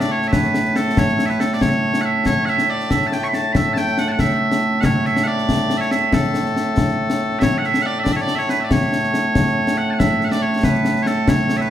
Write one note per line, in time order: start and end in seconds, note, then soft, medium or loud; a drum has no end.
0.00 11.70 A2 medium
0.00 11.70 A3 medium
0.00 0.12 D5 medium
0.00 snare medium
0.12 0.28 C#5 medium
0.22 snare soft
0.28 0.32 E5 medium
0.32 0.76 B4 medium
0.32 concert bass drum medium
0.32 snare medium
0.43 snare soft
0.54 snare medium
0.65 snare soft
0.76 0.98 A4 medium
0.76 snare medium
0.97 1.26 C#5 medium
0.97 concert bass drum medium
0.97 snare loud
1.08 snare soft
1.19 snare medium
1.26 1.40 B4 medium
1.26 1.30 E5 medium
1.26 snare soft
1.40 1.54 A4 medium
1.40 snare medium
1.54 1.62 D5 medium
1.61 2.01 C#5 loud
1.61 concert bass drum medium
1.61 snare medium
1.72 snare soft
1.94 snare medium
2.01 2.26 E5 medium
2.01 2.05 F#5 medium
2.26 2.45 C#5 medium
2.26 concert bass drum medium
2.26 snare medium
2.45 2.70 E5 loud
2.45 2.49 F#5 loud
2.45 snare soft
2.58 snare medium
2.70 2.91 D5 medium
2.80 snare soft
2.91 3.07 E5 loud
2.91 concert bass drum soft
2.91 snare medium
3.02 snare soft
3.07 3.13 A5 medium
3.12 3.24 G5 loud
3.12 snare medium
3.23 3.28 C#6 medium
3.23 snare soft
3.28 3.34 B5 medium
3.33 3.53 A5 medium
3.33 snare medium
3.53 3.73 E5 medium
3.53 3.56 B5 medium
3.53 concert bass drum medium
3.53 snare loud
3.73 3.78 A5 loud
3.73 snare medium
3.78 3.98 G5 loud
3.87 snare soft
3.98 4.08 F#5 medium
3.98 snare medium
4.08 4.20 F#5 medium
4.08 4.12 A5 medium
4.19 4.81 E5 loud
4.19 concert bass drum medium
4.19 snare medium
4.30 snare soft
4.52 snare medium
4.81 5.06 C#5 medium
4.81 4.85 F#5 medium
4.81 concert bass drum medium
4.81 snare loud
5.05 5.24 E5 loud
5.05 snare soft
5.17 snare medium
5.24 5.77 D5 medium
5.24 5.27 F#5 medium
5.38 snare soft
5.49 concert bass drum medium
5.49 snare loud
5.59 snare soft
5.70 snare medium
5.77 5.91 C#5 medium
5.77 5.81 E5 medium
5.77 snare soft
5.91 6.14 E5 medium
5.91 snare medium
6.13 7.39 A4 medium
6.13 concert bass drum medium
6.13 snare loud
6.23 snare soft
6.34 snare medium
6.46 snare soft
6.56 snare medium
6.77 concert bass drum medium
6.77 snare loud
6.89 snare soft
7.10 snare medium
7.39 7.58 C#5 loud
7.39 7.43 E5 loud
7.39 concert bass drum medium
7.39 snare loud
7.58 7.65 F#5 medium
7.64 7.82 E5 loud
7.64 snare soft
7.74 snare medium
7.82 7.99 D5 loud
7.82 7.86 F#5 loud
7.99 8.04 E5 medium
8.04 8.12 D5 loud
8.04 concert bass drum soft
8.04 snare loud
8.12 8.21 C#5 medium
8.12 8.16 E5 medium
8.17 8.35 D5 loud
8.17 snare soft
8.28 snare medium
8.35 8.50 C#5 loud
8.35 8.39 E5 loud
8.35 snare soft
8.49 8.60 B4 medium
8.49 snare medium
8.60 8.72 D5 medium
8.60 8.64 E5 medium
8.71 9.78 C#5 medium
8.71 concert bass drum medium
8.71 snare loud
8.82 snare soft
8.92 snare medium
9.04 snare soft
9.14 snare medium
9.35 concert bass drum medium
9.35 snare medium
9.46 snare soft
9.67 snare medium
9.78 9.90 F#5 medium
9.90 9.99 F#5 medium
9.90 9.93 A5 medium
9.99 10.24 E5 medium
9.99 concert bass drum medium
9.99 snare loud
10.21 10.29 F#5 medium
10.21 snare soft
10.29 10.42 D5 medium
10.29 10.31 E5 medium
10.29 snare medium
10.42 10.64 C#5 medium
10.53 snare soft
10.63 11.03 B4 medium
10.63 concert bass drum medium
10.63 snare loud
10.74 snare soft
10.85 snare medium
10.96 snare soft
11.03 11.07 C#5 medium
11.03 snare medium
11.07 11.29 A4 medium
11.28 11.57 C#5 medium
11.28 concert bass drum medium
11.28 snare loud
11.39 snare soft
11.49 snare medium
11.57 11.70 B4 loud
11.57 11.61 E5 loud
11.57 snare soft